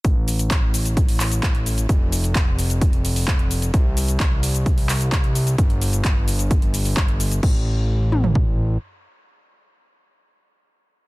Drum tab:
CC |----------------|----------------|----------------|----------------|
HH |x-oxx-oxxooxxxox|x-oxx-oxxxooxxox|x-oxx-oxxooxxxox|xxoxx-oxxxooxxox|
SH |x-xxx-xxx-xxx-xx|x-xxx-xxx-xxx-xx|x-xxx-xxx-xxx-xx|x-xxx-xxx-xxx-xx|
CP |----x-----x-x---|----x-------x---|----x-----x-x---|----x-------x---|
T2 |----------------|----------------|----------------|----------------|
FT |----------------|----------------|----------------|----------------|
BD |o---o---o---o---|o---o---o---o---|o---o---o---o---|o---o---o---o---|

CC |x---------------|----------------|
HH |----------------|----------------|
SH |----------------|----------------|
CP |----------------|----------------|
T2 |------o---------|----------------|
FT |-------o--------|----------------|
BD |o-------o-------|----------------|